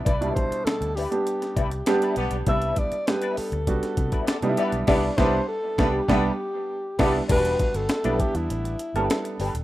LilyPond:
<<
  \new Staff \with { instrumentName = "Alto saxophone" } { \time 4/4 \key c \lydian \tempo 4 = 100 d''8 c''8 a'8 g'2 r8 | e''8 d''8 b'8 a'2 r8 | d''8 c''8 a'8. g'4.~ g'16 g'8 | b'8. a'8. g'16 e'4.~ e'16 r8 | }
  \new Staff \with { instrumentName = "Horn section" } { \time 4/4 \key c \lydian r2. <b d' g' d''>16 r16 <b d' g' d''>8 | r2. <b d' g' d''>16 r16 <b d' g' d''>8 | <b d' g' d''>8 <b d' g' d''>8 r8 <b d' g' d''>8 <b d' g' d''>8 r4 <b d' g' d''>8 | r1 | }
  \new Staff \with { instrumentName = "Clean electric guitar" } { \time 4/4 \key c \lydian <d' e' b'>8 r4 <d' e' b'>16 r8. <d' e' b'>16 r8 <d' e' b'>16 r8 | <d' e' b'>8 r8. <d' e' b'>16 r4 r16 <d' e' b'>16 r8 <d' e' b'>16 r16 | <d' e' b'>8 <d' e' b'>8 r8 <d' e' b'>8 <d' e' b'>8 r4 <d' e' b'>8 | <d' g' b'>8 r8. <d' g' b'>16 r4 r16 <d' g' b'>16 r8 <d' g' b'>16 r16 | }
  \new Staff \with { instrumentName = "Upright piano" } { \time 4/4 \key c \lydian r16 <b, g d' e'>4~ <b, g d' e'>16 r16 <g b d' g'>4 r16 <g b d' g'>8. r16 | <g b d' e'>8. r16 <g b d' g'>8. r16 <g b d' fis'>4 r16 <g b d' dis' e'>8. | <g b d' e'>8 <g b d' e'>8 r8 <g b d'>8 <g b d'>8 r4 <g b d' e'>8 | <g b d' e' fis'>4 r16 <g b d' e'>4~ <g b d' e'>16 r16 <g b d' a'>4 r16 | }
  \new Staff \with { instrumentName = "Fingered electric bass" } { \clef bass \time 4/4 \key c \lydian c,8 r8. d,8 r8. c,8 r8 b,,16 b,,16 | c,8 r4 r16 d,16 c,16 r16 c16 r8 c16 r16 b,,16 | c,8 c,8 r8 c,8 c,8 r4 c,8 | e,,8 r16 g,,16 r16 b,,16 r16 e,16 a,,8 r16 g,,16 r8 g,,16 dis,,16 | }
  \new DrumStaff \with { instrumentName = "Drums" } \drummode { \time 4/4 <hh bd>16 hh16 <hh bd>16 hh16 <hh sn>16 hh16 hho16 hh16 hh16 <hh sn>16 <hh bd>16 hh16 <hh sn>16 hh16 hh16 hh16 | <hh bd>16 hh16 <hh bd>16 hh16 <hh sn>16 hh16 hho16 hh16 <hh bd>16 <hh sn>16 <hh bd>16 <hh bd>16 <hh sn>16 hh16 hh16 hh16 | <cymc bd sn>8 <bd sn>8 r8 <bd sn>8 <bd sn>4 r8 <cymc bd sn>8 | <cymc hh bd>16 hh16 <hh bd>16 hh16 <hh sn>16 hh16 <hh bd>16 hh16 hh16 hh16 hh16 hh16 <hh sn>16 hh16 hho16 hh16 | }
>>